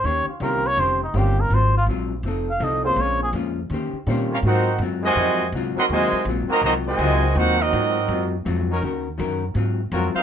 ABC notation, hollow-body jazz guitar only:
X:1
M:4/4
L:1/8
Q:"Swing" 1/4=164
K:Ebmix
V:1 name="Hollow-body jazz guitar"
[E,DGc] z [E,DGc] z [E,DGc] z [E,DGc] z | [A,,_G,CF] z [A,,G,CF] z [F,CE=A] z [F,CEA] z | [B,,A,DF] z [B,,A,DF] z [E,DGc] z [E,DGc] z | [K:Ab] [A,,_G,CF] z [A,,G,CF] z [A,,G,CF] z [A,,G,CF] z |
[A,,_G,CF] z [A,,G,CF] z [A,,G,CF] z [A,,G,CF] z | [A,,_G,CF] z [A,,G,CF] z [A,,G,CF] z [A,,G,CF] z | [E,D_GB] z [E,DGB] z [A,,_G,CF] z [A,,G,CF] z |]